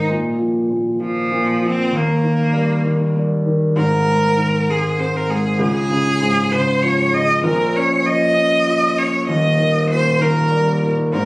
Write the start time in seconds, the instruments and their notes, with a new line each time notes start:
0.08 grand piano A#2
0.39 grand piano F3
0.70 grand piano A#2
1.00 grand piano F3, cello F3
1.31 grand piano A#2
1.62 grand piano F3
1.66 cello C4
1.92 grand piano D#2, cello A#3
2.23 grand piano D#3
2.53 grand piano G3
2.84 grand piano D#3
3.15 grand piano G3
3.46 grand piano D#3
3.76 grand piano G#1 G#2, cello A#4
4.06 grand piano G#3
4.37 grand piano D#3
4.68 grand piano G#3, cello G#4
4.98 grand piano C4, cello C5
5.16 cello A#4
5.28 grand piano G#3, cello G#4
5.58 grand piano C#2, cello G#4
5.90 grand piano C#3
6.21 grand piano G#2
6.51 grand piano C#3, cello C5
6.82 grand piano F3, cello C#5
7.13 grand piano C#3, cello D#5
7.44 grand piano A#1 A#2, cello A#4
7.75 grand piano C#4, cello C#5
8.05 grand piano F3, cello D#5
8.36 grand piano C#4
8.67 grand piano F4
8.97 grand piano C#4, cello C#5
9.28 grand piano D#1 D#2, cello D#5
9.58 grand piano D#3
9.90 grand piano A#2, cello C5
10.20 grand piano D#3, cello A#4
10.51 grand piano G3
10.82 grand piano D#3
11.12 grand piano G#1 G#2, cello A#4